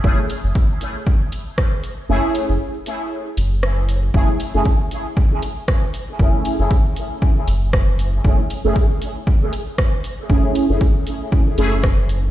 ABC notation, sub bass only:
X:1
M:4/4
L:1/16
Q:"Swing 16ths" 1/4=117
K:F#m
V:1 name="Sub bass" clef=bass
F,,, z2 F,,, z12 | F,,, z2 F,,, z6 F,,,6 | F,,, z2 F,,, z12 | F,,, z2 F,,, z6 F,,,6 |
F,,, z2 F,,, z12 | F,,, z2 F,,, z6 F,,,6 |]